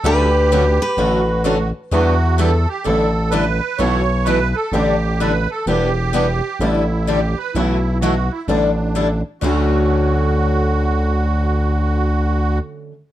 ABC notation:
X:1
M:4/4
L:1/8
Q:"Swing" 1/4=128
K:D
V:1 name="Steel-string acoustic guitar"
B3 B3 z2 | z8 | z8 | z8 |
z8 | z8 | z8 |]
V:2 name="Accordion"
G4 F3 z | F2 A G A2 B2 | c2 B A G2 B A | G4 E2 G B |
E2 F E D3 z | F8- | F8 |]
V:3 name="Steel-string acoustic guitar"
[D,A,CFA] z [D,A,CFA] z [D,A,CFA] z [D,A,CFA] z | [E,G,DEB] z [E,G,DEB] z [D,G,DEA] z [D,G,DEA] z | [B,,E,A,EFB] z [B,,E,A,EFB] z [D,G,DEA] z [D,G,DEA] z | [E,G,DEB] z [E,G,DEB] z [D,G,DEA] z [D,G,DEA] z |
[B,,E,A,EFB] z [B,,E,A,EFB] z [D,G,DEA] z [D,G,DEA] z | [D,A,CFA]8- | [D,A,CFA]8 |]
V:4 name="Steel-string acoustic guitar"
[D,F,A,CF] z [D,F,A,CF] z [D,F,A,CF] z [D,F,A,CF] z | [E,B,DG] z [E,B,DG] z [D,G,DEA] z [D,G,DEA] z | [B,,E,A,EF] z [B,,E,A,EF] z [D,G,DEA] z [D,G,DEA] z | [E,B,DG] z [E,B,DG] z [D,G,DEA] z [D,G,DEA] z |
[B,,E,A,EF] z [B,,E,A,EF] z [D,G,DEA] z [D,G,DEA] z | [D,F,A,CF]8- | [D,F,A,CF]8 |]
V:5 name="FM bass" clef=bass
D,,4 A,,,4 | E,,4 A,,,4 | B,,,4 A,,,4 | E,,,4 A,,,4 |
B,,,4 A,,,4 | D,,8- | D,,8 |]